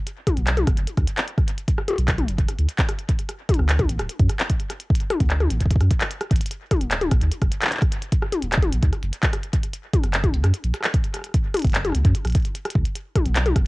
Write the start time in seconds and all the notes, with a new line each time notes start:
0.07 closed hi-hat
0.27 kick, cross-stick, closed hi-hat, high tom
0.37 B1, closed hi-hat
0.47 clap, closed hi-hat
0.57 closed hi-hat, high tom
0.67 F#1, kick, cross-stick, closed hi-hat
0.77 F#1, closed hi-hat
0.87 closed hi-hat
0.97 D2, kick, cross-stick, closed hi-hat
1.07 closed hi-hat
1.18 clap, closed hi-hat
1.28 closed hi-hat
1.38 kick, cross-stick, closed hi-hat
1.48 closed hi-hat
1.58 closed hi-hat
1.68 kick, closed hi-hat
1.78 cross-stick
1.88 closed hi-hat, high tom
1.91 high tom
1.93 high tom
1.96 B1, closed hi-hat, high tom
2.08 kick, cross-stick, clap, closed hi-hat
2.18 closed hi-hat, high tom
2.28 F#1, closed hi-hat
2.38 F#1, kick, closed hi-hat
2.49 cross-stick, closed hi-hat
2.58 D2, closed hi-hat
2.69 closed hi-hat
2.79 kick, clap, closed hi-hat
2.89 cross-stick, closed hi-hat
2.99 closed hi-hat
3.09 kick, closed hi-hat
3.19 closed hi-hat
3.29 cross-stick, closed hi-hat
3.49 kick, closed hi-hat, high tom
3.54 closed hi-hat
3.59 D2, cross-stick
3.69 clap, closed hi-hat
3.79 kick, closed hi-hat, high tom
3.89 A1, closed hi-hat
3.99 D1, cross-stick, closed hi-hat
4.09 closed hi-hat
4.20 F#2, kick, closed hi-hat
4.30 cross-stick, closed hi-hat
4.40 clap, closed hi-hat
4.50 kick, closed hi-hat
4.60 closed hi-hat
4.70 cross-stick, closed hi-hat
4.80 closed hi-hat
4.90 kick
4.95 closed hi-hat
5.00 closed hi-hat
5.10 cross-stick, closed hi-hat, high tom
5.20 D2, kick, closed hi-hat
5.30 clap, closed hi-hat
5.40 cross-stick, closed hi-hat, high tom
5.50 A1, closed hi-hat
5.61 D1, kick, closed hi-hat
5.66 kick
5.71 kick, closed hi-hat
5.76 kick
5.81 F#2, cross-stick, closed hi-hat
5.91 kick, closed hi-hat
6.01 clap, closed hi-hat
6.11 closed hi-hat
6.21 cross-stick, closed hi-hat
6.31 A1, kick, closed hi-hat
6.36 closed hi-hat
6.41 closed hi-hat
6.46 closed hi-hat
6.51 closed hi-hat
6.71 kick, cross-stick, closed hi-hat, high tom
6.81 D#1, closed hi-hat
6.91 clap, closed hi-hat
7.01 closed hi-hat, high tom
7.11 A#1, kick, cross-stick, closed hi-hat
7.21 D#2, closed hi-hat
7.32 closed hi-hat
7.42 F#1, kick, cross-stick, closed hi-hat
7.52 closed hi-hat
7.62 clap, closed hi-hat
7.64 clap
7.67 clap
7.69 clap
7.72 clap, closed hi-hat
7.74 clap
7.77 clap
7.79 kick, cross-stick, clap, closed hi-hat
7.92 closed hi-hat
8.02 closed hi-hat
8.12 kick, closed hi-hat
8.22 cross-stick
8.32 closed hi-hat, high tom
8.42 D#1, closed hi-hat
8.52 cross-stick, clap, closed hi-hat
8.57 kick
8.62 closed hi-hat, high tom
8.72 A#1, closed hi-hat
8.83 D#2, kick, closed hi-hat
8.93 cross-stick, closed hi-hat
9.03 F#1, closed hi-hat
9.13 closed hi-hat
9.23 kick, clap, closed hi-hat
9.33 cross-stick, closed hi-hat
9.43 closed hi-hat
9.53 kick, closed hi-hat
9.63 closed hi-hat
9.73 closed hi-hat
9.93 kick, closed hi-hat, high tom
10.03 F#1, cross-stick, closed hi-hat
10.14 clap, closed hi-hat
10.24 kick, closed hi-hat, high tom
10.34 C#2, closed hi-hat
10.44 F#2, cross-stick, closed hi-hat
10.54 closed hi-hat
10.64 A#1, closed hi-hat
10.74 cross-stick, closed hi-hat
10.81 cross-stick, clap, closed hi-hat
10.87 cross-stick
10.94 kick, closed hi-hat
11.04 closed hi-hat
11.14 cross-stick, closed hi-hat
11.17 cross-stick
11.19 cross-stick
11.22 cross-stick
11.24 cross-stick, closed hi-hat
11.27 cross-stick
11.29 cross-stick
11.32 kick, cross-stick, closed hi-hat
11.54 cross-stick, closed hi-hat, high tom
11.57 closed hi-hat
11.59 closed hi-hat
11.62 F#1, kick, closed hi-hat
11.65 closed hi-hat
11.67 closed hi-hat
11.70 closed hi-hat
11.72 clap, closed hi-hat
11.75 closed hi-hat
11.85 cross-stick, closed hi-hat, high tom
11.87 cross-stick
11.90 cross-stick
11.92 C#2, cross-stick, closed hi-hat
12.05 F#2, kick, closed hi-hat
12.15 closed hi-hat
12.25 A#1, cross-stick, closed hi-hat
12.27 closed hi-hat
12.30 closed hi-hat
12.32 closed hi-hat
12.35 kick, closed hi-hat
12.37 closed hi-hat
12.40 closed hi-hat
12.43 closed hi-hat
12.45 closed hi-hat
12.55 closed hi-hat
12.65 cross-stick, closed hi-hat
12.70 closed hi-hat
12.75 C#2, kick
12.85 closed hi-hat
12.96 closed hi-hat
13.16 kick, cross-stick, closed hi-hat, high tom
13.26 B1, closed hi-hat
13.36 clap, closed hi-hat
13.46 closed hi-hat, high tom
13.56 F#1, kick, cross-stick, closed hi-hat